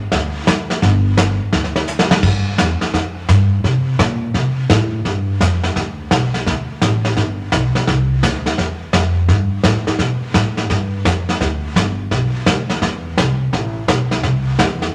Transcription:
0.12 upright bass D2, brush sweep, kick, snare
0.47 kick, snare, hi-hat pedal
0.70 snare
0.82 upright bass G1, brush sweep, kick, snare
1.17 kick, snare, hi-hat pedal
1.53 upright bass D2, brush sweep, kick, snare
1.64 snare
1.76 snare
1.87 hi-hat pedal
1.99 snare
2.11 snare
2.23 upright bass G2, brush sweep, kick, snare, crash
2.58 upright bass E2, kick, snare, hi-hat pedal
2.81 muted upright bass stroke, snare
2.94 upright bass F2, brush sweep, kick, snare
3.29 upright bass G2, kick, snare, hi-hat pedal
3.64 upright bass C3, brush sweep, kick, snare
3.99 upright bass A#2, kick, snare, hi-hat pedal
4.34 upright bass C3, brush sweep, kick, snare
4.70 upright bass A2, kick, snare, hi-hat pedal
5.05 upright bass G2, brush sweep, kick, snare
5.40 upright bass F2, kick, snare, hi-hat pedal
5.63 snare
5.76 upright bass D2, brush sweep, kick, snare
6.11 upright bass B1, kick, snare, hi-hat pedal
6.34 snare
6.46 upright bass D2, brush sweep, kick, snare
6.82 upright bass A1, kick, snare, hi-hat pedal
7.05 snare
7.17 upright bass G1, brush sweep, kick, snare
7.52 upright bass B1, kick, snare, hi-hat pedal
7.75 muted upright bass stroke, snare
7.87 upright bass C2, brush sweep, kick, snare
8.23 upright bass D2, kick, snare, hi-hat pedal
8.46 snare
8.58 upright bass E2, brush sweep, kick, snare
8.93 upright bass F2, kick, snare, hi-hat pedal
9.28 upright bass G2, brush sweep, kick, snare
9.63 upright bass A2, kick, snare, hi-hat pedal
9.87 muted upright bass stroke, snare
9.99 upright bass B2, brush sweep, kick, snare
10.34 upright bass A2, kick, snare, hi-hat pedal
10.57 snare
10.70 upright bass G2, brush sweep, kick, snare
11.05 upright bass F2, kick, snare, hi-hat pedal
11.29 snare
11.40 upright bass D2, brush sweep, kick, snare
11.76 upright bass G1, kick, snare, hi-hat pedal
12.11 upright bass B1, brush sweep, kick, snare
12.46 upright bass D2, kick, snare, hi-hat pedal
12.70 snare
12.82 upright bass E2, brush sweep, kick, snare
13.17 upright bass C2, kick, snare, hi-hat pedal
13.53 upright bass A1, brush sweep, kick, snare
13.88 upright bass B1, kick, snare, hi-hat pedal
14.11 snare
14.23 upright bass C2, brush sweep, kick, snare
14.59 upright bass E2, kick, snare, hi-hat pedal
14.82 snare

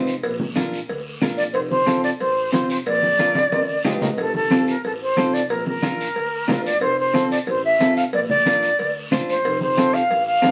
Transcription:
Already playing: upright bass F1, clean electric guitar C4 F4 C5
0.07 short guiro
0.23 upright bass A#1, cowbell, long guiro
0.39 high conga, low conga
0.56 clean electric guitar D4 F4 A#4, cowbell, high conga, short guiro
0.73 short guiro
0.89 upright bass D2, cowbell, long guiro
1.22 upright bass A#1, clean electric guitar D4 F4 A#4, cowbell, high conga, low conga, short guiro
1.37 flute D5, short guiro
1.53 upright bass F1, flute C5, cowbell, long guiro
1.70 flute C5, high conga
1.86 clean electric guitar C4 F4 A4, cowbell, high conga, short guiro
2.04 flute D5, short guiro
2.20 upright bass A1, flute C5, cowbell, long guiro
2.52 upright bass F1, clean electric guitar C4 F4 C5, flute C5, cowbell, high conga, short guiro
2.69 flute C5, short guiro
2.85 upright bass A#1, flute D5, cowbell, long guiro
3.03 high conga
3.19 clean electric guitar D4 F4 A#4, cowbell, high conga, short guiro
3.35 high conga, short guiro
3.52 upright bass D2, cowbell, high conga, high timbale, long guiro
3.85 upright bass A#1, clean electric guitar D4 F4 G4, cowbell, low conga, low timbale, short guiro
4.02 flute A#4, low conga, low timbale, short guiro
4.17 upright bass F1, flute A4, cowbell, long guiro
4.34 flute A4, high conga
4.50 clean electric guitar C4 F4 A4, cowbell, high conga, short guiro
4.68 flute A#4, short guiro
4.84 upright bass A1, flute A4, cowbell, long guiro
5.02 flute C5
5.17 upright bass F1, clean electric guitar C4 F4 A4, cowbell, high conga, short guiro
5.34 flute D5, short guiro
5.49 upright bass A#1, flute A#4, cowbell, long guiro
5.66 flute A#4, high conga
5.82 clean electric guitar D4 F4 A#4, cowbell, high conga, short guiro
6.00 short guiro
6.15 upright bass D2, cowbell, long guiro
6.48 upright bass A#1, clean electric guitar D4 F4 A#4, cowbell, high conga, low conga, low timbale, short guiro
6.65 flute D5, short guiro
6.81 upright bass F1, flute C5, cowbell, long guiro
7.00 flute C5
7.14 clean electric guitar C4 F4 A4, cowbell, high conga, short guiro
7.31 flute D5, short guiro
7.47 upright bass A1, flute C5, cowbell, long guiro
7.65 flute E5
7.79 upright bass F1, clean electric guitar C4 F4 A4, cowbell, high conga, short guiro
7.97 flute F5, short guiro
8.13 upright bass A#1, flute D5, cowbell, long guiro
8.29 flute D5, low conga
8.46 clean electric guitar D4 F4 A#4, cowbell, high conga, short guiro
8.63 short guiro
8.79 upright bass D2, cowbell, long guiro
9.11 upright bass A#1, clean electric guitar D4 F4 C5, cowbell, high conga, low conga, short guiro
9.29 flute C5, short guiro
9.44 upright bass F1, cowbell, long guiro
9.61 flute C5, high conga
9.77 clean electric guitar C4 F4 A4, cowbell, high conga, short guiro
9.94 flute F5, short guiro
10.10 upright bass A1, cowbell, long guiro
10.27 flute F5
10.42 upright bass F1, clean electric guitar C4 F4 A4, cowbell, high conga, low timbale, short guiro

